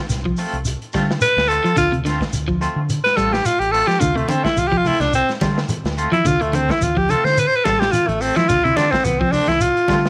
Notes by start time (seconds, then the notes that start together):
0.10 C2, snare, closed hi-hat, shekere
0.25 F3, kick
0.37 A3 C4 F4, open hi-hat, shekere
0.53 C2, closed hi-hat
0.65 closed hi-hat, shekere
0.82 closed hi-hat
0.93 D3 G3 A3 C4 F4, kick, snare, closed hi-hat, shekere
1.11 snare
1.21 B4, closed hi-hat, shekere
1.37 D2, snare, closed hi-hat
1.48 A3 C4 F4 A4, closed hi-hat, shekere
1.64 F3 C4 F4, closed hi-hat
1.76 D2 D3 F4, kick, closed hi-hat, shekere
1.92 C3, closed hi-hat
2.05 D3 A3 C4 F4, snare, closed hi-hat, shekere
2.21 kick, snare, closed hi-hat
2.33 D2, closed hi-hat, shekere
2.48 F3, kick
2.61 A3 C4 F4, closed hi-hat, shekere
2.76 D3
2.89 closed hi-hat, shekere
3.04 B4, snare, closed hi-hat
3.16 A1 G3 A3 C4 F4 A4, kick, closed hi-hat, shekere
3.32 G4, snare
3.45 F4, closed hi-hat, shekere
3.59 A1 G4, closed hi-hat
3.72 A3 C4 F4 A4, open hi-hat, shekere
3.87 F3 G4, snare, closed hi-hat
4.00 D2 D3 F4, kick, closed hi-hat, low conga, shekere
4.16 C3 A3 C4 F4, closed hi-hat
4.29 D3 A3 C4 F4, closed hi-hat, high conga, shekere
4.44 E4, kick, snare, closed hi-hat
4.56 C2 F4, closed hi-hat, high conga, shekere
4.67 G4
4.72 F3, kick
4.77 F4
4.85 A3 C4 E4 F4, open hi-hat, low conga, shekere
5.00 C2 D4, snare, closed hi-hat, low conga
5.13 C4, closed hi-hat, shekere
5.29 snare, closed hi-hat
5.41 D3 G3 A3 C4 F4, kick, snare, closed hi-hat, high conga, shekere
5.58 snare
5.69 closed hi-hat, high conga, shekere
5.84 D2, snare, closed hi-hat
5.97 A3 C4 F4, closed hi-hat, shekere
6.12 F3 E4, closed hi-hat, high conga
6.25 D2 D3 F4, kick, closed hi-hat, low conga, shekere
6.41 A3 C4 F4, muted clean electric guitar stroke, closed hi-hat
6.53 D3 A3 C4, muted clean electric guitar stroke, closed hi-hat, high conga, shekere
6.69 E4, kick, snare, closed hi-hat
6.81 D2 F4, closed hi-hat, high conga, shekere
6.97 F3 G4, kick
7.09 A3 C4 F4 A4, closed hi-hat, low conga, shekere
7.24 D3 C5, snare
7.37 B4, closed hi-hat, shekere
7.47 C5
7.53 B4, closed hi-hat
7.65 A1 G3 C4 F4 A4, kick, snare, closed hi-hat, high conga, shekere
7.79 G4, snare
7.92 F4, closed hi-hat, high conga, shekere
8.07 A1 A3, closed hi-hat, high conga
8.21 A3 C4, muted clean electric guitar stroke, open hi-hat, shekere
8.36 F3 C4 E4 F4, snare, closed hi-hat, high conga
8.48 D2 D3 F4, kick, closed hi-hat, low conga, shekere
8.63 C3 C4 E4 F4, closed hi-hat
8.76 D3 A3 C4 D4 F4, snare, closed hi-hat, high conga, shekere
8.92 C4, kick, snare, closed hi-hat
9.04 C2 B3, closed hi-hat, high conga, shekere
9.20 F3 C4, kick
9.32 A3 C4 D4, muted clean electric guitar stroke, open hi-hat, low conga, shekere
9.47 C2 E4, snare, closed hi-hat, high conga
9.61 F4, closed hi-hat, shekere
9.77 closed hi-hat
9.88 D3 G3 A3 C4 F4, kick, snare, closed hi-hat, high conga, shekere
10.06 snare